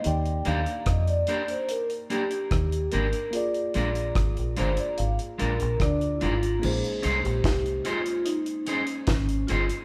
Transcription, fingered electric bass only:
X:1
M:4/4
L:1/16
Q:1/4=73
K:Bbmix
V:1 name="Fingered electric bass" clef=bass
E,,2 E,, z F,,2 z6 E,,2 A,,, z | z2 B,,,2 A,,, B,,, G,,, z A,,, z B,,, B,,, D,,2 A,,,2 | B,,, z C,, B,,, C,,2 z6 A,,,2 G,,, z |]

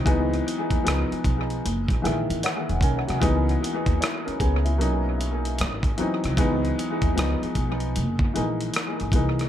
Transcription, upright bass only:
X:1
M:4/4
L:1/16
Q:"Swing 16ths" 1/4=76
K:C#dor
V:1 name="Upright bass" clef=bass
C,,2 z D,, C,, z B,,,2 F,,, A,,, A,,, G,,, z E,,, B,,, ^B,,, | C,,2 z D,, z2 C,,2 B,,,4 G,,,2 z ^B,,, | C,,2 z D,, C,, z B,,,2 F,,,2 A,,,2 z G,,, ^B,,,2 |]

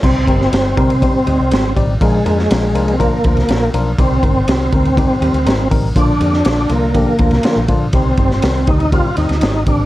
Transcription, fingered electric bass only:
X:1
M:4/4
L:1/16
Q:1/4=121
K:Cm
V:1 name="Fingered electric bass" clef=bass
C,,2 G,,,2 G,,,2 C,3 z D,, C,, A,,,2 =A,,,2 | B,,,2 F,,2 B,,,2 C,,3 z D,, C,, B,,,2 =B,,,2 | C,,2 G,,,2 C,,2 D,,3 z E,, D,, A,,,2 =A,,,2 | B,,,2 F,,2 B,,,2 C,,3 z D,, C,, z B,,, B,,2 |
C,,2 G,,,2 C,,2 D,,3 z E,, D,, A,,,2 =A,,,2 |]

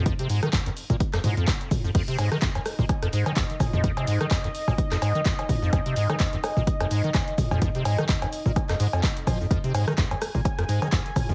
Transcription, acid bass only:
X:1
M:4/4
L:1/16
Q:"Swing 16ths" 1/4=127
K:Fm
V:1 name="Acid bass" clef=bass
F,, C, A,, E, F,, F,, z B,, z F,, A,, F,, z3 F,, | F,, C, A,, E, F,, F,, z B,, z F,, A,, E, F,, z2 F,, | F,, C, A,, E, F,, F,, z B,, z F,, A,, E, F,, z2 F,, | z C, A,, E, F,, F,, z B,, z F,, A,, E, F,, z2 F,, |
F,, C, A,, E, F,, F,, z B,, z F,, A,, F,, F,, z F, F,, | F,, C, A,, E, F,, F,, z B,, z F,, A,, E, F,, z2 F,, |]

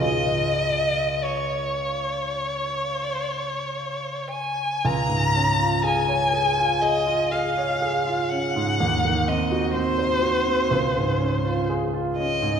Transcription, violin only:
X:1
M:4/4
L:1/8
Q:1/4=61
K:Db
V:1 name="Violin"
e2 d4- d a | b2 a2 e f2 g- | g e c4 z e |]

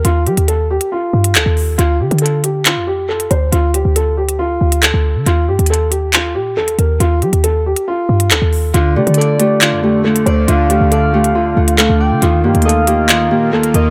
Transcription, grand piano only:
X:1
M:4/4
L:1/8
Q:1/4=138
K:Dphr
V:1 name="Grand piano"
F G A G F2 A2 | F G A G F G A c | F G A G F2 A2 | F G A G F G A B |
F G A G F2 A2 | F G A G F G A c | F G A G F2 A2 | F G A G F G A B |]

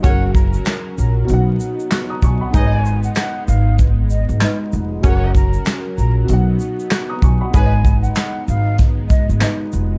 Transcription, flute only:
X:1
M:4/4
L:1/16
Q:"Swing 16ths" 1/4=96
K:G#m
V:1 name="Flute"
f2 a2 z2 a z8 z | g3 f f2 ^e2 z2 d z4 z | f2 a2 z2 a z8 z | g3 f f2 ^e2 z2 d z4 z |]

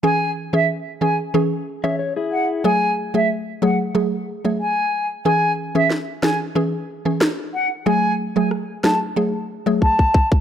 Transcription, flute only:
X:1
M:4/4
L:1/16
Q:1/4=92
K:C#m
V:1 name="Flute"
g2 z e z2 g z6 z f z | g2 z e z2 f z4 z g3 z | g2 z e z2 g z6 z f z | g2 z g z2 a z4 z a3 z |]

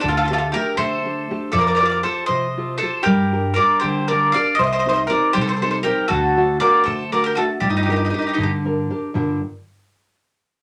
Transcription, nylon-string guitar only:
X:1
M:6/8
L:1/8
Q:3/8=79
K:Gm
V:1 name="Nylon-string guitar"
D, [A,DG] [A,DG] A, [A,DG] [A,DG] | F, [FGA] [FGA] C, [FGA] [FGA] | G, [DGB] [DGB] D, [DGB] [DGB] | C, [CEG] [CEG] G, [CEG] [CEG] |
D, [A,D^F] [A,DF] A, [A,DF] [A,DF] | G, [DGB] [DGB] D, [DGB] [DGB] | [G,,D,G,DBg] z4 z |]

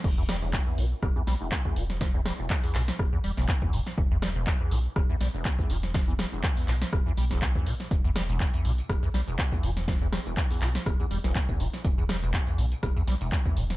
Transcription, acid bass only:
X:1
M:4/4
L:1/16
Q:"Swing 16ths" 1/4=122
K:Em
V:1 name="Acid bass" clef=bass
E,, E,, G, E,,, E,, E,, B,, z E,, E,, G, E,,, z E,, B,, z | E,, E,, G, E,,, E,, E,, B,, z E,, E,, G, E,,, E,, E,, B,, z | E,, E,, G, E,,, E,, E,, B,, z E,, E,, G, E,,, E,, E,, B,, z | E,, E,, G, E,,, E,, E,, B,, z E,, E,, G, E,,, E,, E,, B,, z |
E,, E,, G, E,,, E,, E,, B,, z E,, E,, G, E,,, E,, E,, B,, z | E,, E,, G, E,,, E,, E,, B,, z E,, E,, G, E,,, E,, E,, B,, z | E,, E,, G, E,,, z E,, B,, z E,, E,, G, E,,, E,, E,, B,, z |]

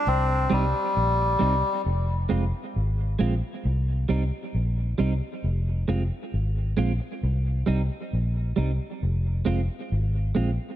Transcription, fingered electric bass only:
X:1
M:4/4
L:1/16
Q:1/4=67
K:Cm
V:1 name="Fingered electric bass" clef=bass
C,,2 C,, z B,,,2 C,, z F,,,2 F,,, z A,,,2 B,,, z | C,,2 C,, z B,,,2 C,, z F,,,2 F,,, z A,,,2 B,,, z | C,,2 C,, z B,,,2 C,, z F,,,2 F,,, z A,,,2 B,,, z |]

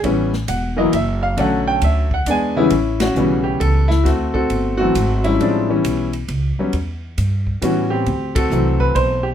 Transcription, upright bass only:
X:1
M:3/4
L:1/8
Q:"Swing" 1/4=134
K:Amix
V:1 name="Upright bass" clef=bass
A,,,2 E,,,2 F,,,2 | B,,,2 D,,2 E,,2 | A,,,2 B,,,2 C,,2 | D,,2 G,,,2 ^G,,,2 |
A,,,2 B,,,2 C,, z | E,,2 G,,2 A,,2 | D,,2 =C,,2 B,,,2 |]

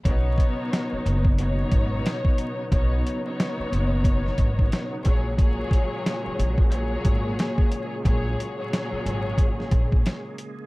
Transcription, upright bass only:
X:1
M:4/4
L:1/8
Q:"Swing 16ths" 1/4=90
K:B
V:1 name="Upright bass" clef=bass
B,,, z2 F,,,2 G,,, z2 | B,,, z2 F,,,2 G,,, z A,,,- | A,,, z2 A,,,2 G,,, z2 | A,,, z2 G,,,2 A,,, z2 |]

